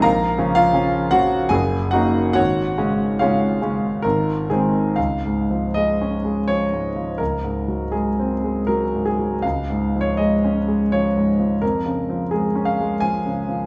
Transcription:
<<
  \new Staff \with { instrumentName = "Grand piano" } { \time 3/4 \key des \major \tempo 4 = 81 << { bes''8. f''8. ges''8 aes''8 ges''8 | ges''4 f''4 bes'8 aes'8 | f''4 ees''4 des''4 | bes'4 aes'4 bes'8 aes'8 |
f''8. des''16 ees''4 des''4 | bes'4 aes'8 f''8 aes''4 | } \\ { <bes' f''>8. f'8. ges'8 aes'8 ges'8 | <ges' des''>4 <f' des''>4. r8 | r2. | r2. |
r2. | r2. | } >> }
  \new Staff \with { instrumentName = "Grand piano" } { \clef bass \time 3/4 \key des \major bes,,8 <des f des'>8 <des f des'>8 <des f des'>8 ges,,8 <des bes ees'>8 | aes,,8 <des aes des'>8 <des aes des'>8 <des aes des'>8 aes,,8 <ees aes c'>8 | \tuplet 3/2 { des,8 aes,8 f8 aes8 des'8 aes8 f8 aes,8 f8 } | \tuplet 3/2 { des,8 aes,8 ges8 aes8 c'8 aes8 ges8 aes,8 ges8 } |
\tuplet 3/2 { des,8 aes,8 f8 aes8 des'8 aes8 f8 aes,8 f8 } | \tuplet 3/2 { f,8 des8 f8 aes8 des'8 aes8 f8 des8 f8 } | }
>>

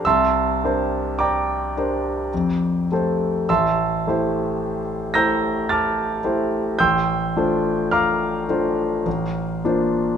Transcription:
\new Staff \with { instrumentName = "Grand piano" } { \time 3/4 \key a \phrygian \tempo 4 = 53 << { <e'' a'' c''' e'''>4 <d'' g'' bes'' d'''>4. r8 | <e'' a'' c''' e'''>4. <bes'' e''' g''' bes'''>8 <a'' d''' f''' a'''>4 | <g'' c''' e''' g'''>4 <f'' bes'' d''' f'''>4. r8 | } \\ { c,8 <d' g' bes' c''>4 <d' g' bes' c''>8 f,8 <a g' a' c''>8 | a,,8 <a e' g' c''>4 <a e' g' c''>4 <a e' g' c''>8 | a,,8 <a d' f' c''>4 <a d' f' c''>8 a,,8 <bes d' f' c''>8 | } >> }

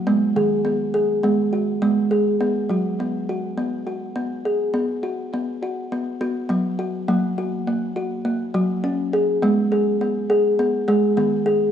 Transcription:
<<
  \new Staff \with { instrumentName = "Kalimba" } { \time 4/4 \key b \major \tempo 4 = 102 b8 gis'8 b8 gis'8 b8 fis'8 b8 gis'8 | r8 fis'8 b8 fis'8 r8 fis'8 b8 gis'8 | r8 fis'8 b8 fis'8 b8 fis'8 b8 fis'8 | ais8 fis'8 ais8 fis'8 ais8 fis'8 r8 gis'8 |
b8 gis'8 b8 gis'8 b8 gis'8 b8 gis'8 | }
  \new Staff \with { instrumentName = "Kalimba" } { \clef bass \time 4/4 \key b \major gis8 dis4. gis4 gis4 | b8 fis4. b4 r4 | b2 r8 b8 fis4 | fis2 r8 fis8 cis'4 |
gis2 r8 gis8 dis4 | }
>>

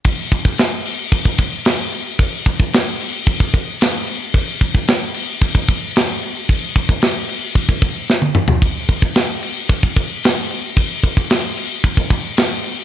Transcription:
\new DrumStaff \with { instrumentName = "Drums" } \drummode { \time 4/4 \tempo 4 = 112 <cymc bd>8 <cymc bd>16 bd16 <cymc sn>8 cymc8 <cymc bd>16 bd16 <cymc bd>8 <cymc sn>8 cymc8 | <cymc bd>8 <cymc bd>16 bd16 <cymc sn>8 cymc8 <cymc bd>16 bd16 <cymc bd>8 <cymc sn>8 cymc8 | <cymc bd>8 <cymc bd>16 bd16 <cymc sn>8 cymc8 <cymc bd>16 bd16 <cymc bd>8 <cymc sn>8 cymc8 | <cymc bd>8 <cymc bd>16 bd16 <cymc sn>8 cymc8 <cymc bd>16 bd16 <cymc bd>8 sn16 tommh16 toml16 tomfh16 |
<cymc bd>8 <cymc bd>16 bd16 <cymc sn>8 cymc8 <cymc bd>16 bd16 <cymc bd>8 <cymc sn>8 cymc8 | <cymc bd>8 <cymc bd>16 bd16 <cymc sn>8 cymc8 <cymc bd>16 bd16 <cymc bd>8 <cymc sn>8 cymc8 | }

